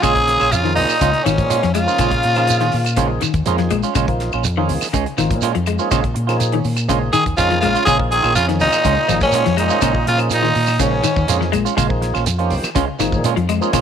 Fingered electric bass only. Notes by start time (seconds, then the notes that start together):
0.03 A#1
0.41 A#1
0.54 F2
0.78 C#2
1.01 C#2
1.27 G#1
1.38 A#2
1.64 F2
1.99 A#1
2.25 A#2
2.74 A#2
2.97 A#1
3.34 D#2
3.46 F2
3.71 A#1
3.95 A#1
4.33 A#1
4.45 F2
4.69 C#2
4.94 C#2
5.19 G#1
5.31 A#2
5.56 F2
5.91 A#1
6.16 A#2
6.65 A#2
6.89 A#1
7.27 D#2
7.38 F2
7.64 A#1
7.87 A#1
8.24 A#1
8.37 F2
8.61 C#2
8.85 C#2
9.10 G#1
9.22 A#2
9.47 F2
9.83 A#1
10.07 A#2
10.56 A#2
10.79 A#1
11.17 D#2
11.29 F2
11.54 A#1
11.78 A#1
12.16 A#1
12.27 F2
12.51 C#2
12.64 muted fingered electric bass stroke
12.75 C#2
13.00 G#1
13.12 A#2
13.37 F2
13.74 A#1